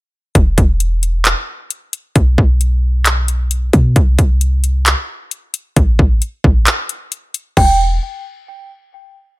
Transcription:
0.35 808-style bass E1, kick, closed hi-hat
0.58 808-style bass E1, kick, closed hi-hat
0.80 closed hi-hat
1.03 closed hi-hat
1.25 clap, closed hi-hat
1.70 closed hi-hat
1.93 closed hi-hat
2.16 808-style bass B1, kick, closed hi-hat
2.38 808-style bass B1, kick
2.61 closed hi-hat
3.06 clap, closed hi-hat
3.28 closed hi-hat
3.51 closed hi-hat
3.73 808-style bass B2, kick, closed hi-hat
3.96 808-style bass C2, kick, closed hi-hat
4.19 808-style bass C2, kick, closed hi-hat
4.41 closed hi-hat
4.64 closed hi-hat
4.86 clap, closed hi-hat
5.31 closed hi-hat
5.54 closed hi-hat
5.76 808-style bass A1, kick, closed hi-hat
5.99 808-style bass A1, kick
6.22 closed hi-hat
6.44 808-style bass A1, kick
6.67 clap, closed hi-hat
6.89 closed hi-hat
7.12 closed hi-hat
7.34 closed hi-hat
7.57 808-style bass E1, celesta G5, kick, crash

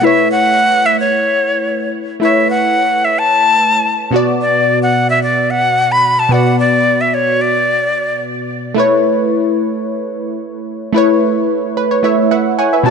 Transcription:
0.01 synth keys A3 E4 B4, flute E5
0.07 synth keys C#5
0.31 flute F#5
0.86 flute E5
1.00 flute C#5
2.20 synth keys A3 E4 B4, flute E5
2.25 synth keys C#5
2.50 flute F#5
3.05 flute E5
3.19 flute A5
4.11 synth keys B2 B3 F#4
4.16 synth keys D5
4.41 flute D5
4.83 flute F#5
5.10 flute E5
5.23 flute D5
5.50 flute F#5
5.92 flute B5
6.19 flute A5
6.29 synth keys B2 B3 F#4, flute F#5
6.34 synth keys D5
6.59 flute D5
7.01 flute E5
7.14 flute C#5
7.41 flute D5
8.74 synth keys A3 E4 B4
8.79 synth keys C#5
10.93 synth keys A3 E4 B4
10.98 synth keys C#5
11.77 synth keys B4
11.91 synth keys C#5
12.03 synth keys A3 E4 B4 C#5 E5
12.31 synth keys B4 E5 F#5
12.59 synth keys C#5 F#5 G#5
12.73 synth keys B4 E5
12.83 synth keys B2 B3 F#4 A5

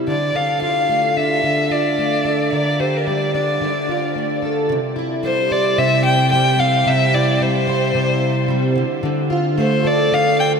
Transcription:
Already playing: steel-string acoustic guitar C3 G3 C4 E4 C5
0.07 steel-string acoustic guitar D3, violin D5
0.34 steel-string acoustic guitar D3 A4, violin F5
0.62 steel-string acoustic guitar F4, violin F5
0.89 steel-string acoustic guitar A3
1.16 steel-string acoustic guitar D4, violin E5
1.43 steel-string acoustic guitar D3
1.70 steel-string acoustic guitar F4, violin D5
1.98 steel-string acoustic guitar A3
2.25 steel-string acoustic guitar A4
2.52 steel-string acoustic guitar D3 A#4, violin D5
2.80 steel-string acoustic guitar G4, violin C5
2.97 violin A#4
3.07 steel-string acoustic guitar G3, violin D5
3.34 steel-string acoustic guitar D4, violin D5
3.61 steel-string acoustic guitar D3
3.89 steel-string acoustic guitar F4
4.15 steel-string acoustic guitar A3
4.42 steel-string acoustic guitar A4
4.69 steel-string acoustic guitar C3
4.96 steel-string acoustic guitar E4
5.23 steel-string acoustic guitar G3, violin C5
5.51 steel-string acoustic guitar C5, violin D5
5.78 steel-string acoustic guitar C3, violin E5
6.06 violin G5
6.32 steel-string acoustic guitar G3, violin G5
6.59 steel-string acoustic guitar C4, violin F5
6.86 steel-string acoustic guitar C3, violin E5
7.13 steel-string acoustic guitar E4, violin D5
7.40 steel-string acoustic guitar G3, violin C5
7.67 steel-string acoustic guitar C5
7.94 steel-string acoustic guitar C3
8.48 steel-string acoustic guitar G3
8.76 steel-string acoustic guitar D3
9.03 steel-string acoustic guitar D3
9.30 steel-string acoustic guitar F4
9.58 steel-string acoustic guitar A3, violin C5
9.84 steel-string acoustic guitar A4, violin D5
10.12 steel-string acoustic guitar D3, violin F5
10.40 violin G5

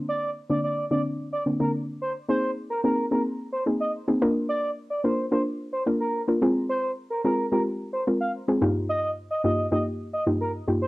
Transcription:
Already playing: synth pluck D3 A#3 C4 D4
0.09 analog synth lead D5
0.50 synth pluck D3 A#3 C4 D4, analog synth lead D5
0.64 analog synth lead D5
0.91 synth pluck D3 A#3 C4 D4, analog synth lead D5
1.33 analog synth lead D5
1.46 synth pluck D3 A#3 C4 D4
1.60 synth pluck D3 A#3 C4 D4, analog synth lead A#4
2.01 analog synth lead C5
2.28 synth pluck A#3 C4 D#4 G#4, analog synth lead C5
2.70 analog synth lead A#4
2.84 synth pluck A#3 C4 D#4 G#4, analog synth lead A#4
3.11 synth pluck A#3 C4 D#4 G#4, analog synth lead A#4
3.53 analog synth lead C5
3.66 synth pluck A#3 C4 D#4 G#4
3.80 analog synth lead D#5
4.08 synth pluck A#3 C4 D#4 G#4
4.22 synth pluck A#3 D4 F4 A#4
4.49 analog synth lead D5
4.90 analog synth lead D5
5.04 synth pluck A#3 D4 F4 A#4, analog synth lead C5
5.32 synth pluck A#3 D4 F4 A#4, analog synth lead C5
5.73 analog synth lead C5
5.87 synth pluck A#3 D4 F4 A#4
6.00 analog synth lead A#4
6.28 synth pluck A#3 D4 F4 A#4
6.42 synth pluck G#3 C4 F4 G#4
6.69 analog synth lead C5
7.10 analog synth lead A#4
7.24 synth pluck G#3 C4 F4 G#4, analog synth lead A#4
7.51 synth pluck G#3 C4 F4 G4, analog synth lead A#4
7.93 analog synth lead C5
8.07 synth pluck G#3 C4 F4 A#4
8.21 analog synth lead F5
8.48 synth pluck G#3 C4 F4 G#4
8.61 synth pluck G2 A#3 D#4 F4 G4
8.89 analog synth lead D#5
9.31 analog synth lead D#5
9.44 synth pluck G2 A#3 D#4 F4 G4, analog synth lead D#5
9.72 synth pluck G2 A#3 D#4 F4 G4, analog synth lead D#5
10.13 analog synth lead D#5
10.26 synth pluck G2 A#3 D#4 F4 G4
10.41 analog synth lead A#4
10.67 synth pluck G2 A#3 D#4 F4 G4
10.82 analog synth lead C5

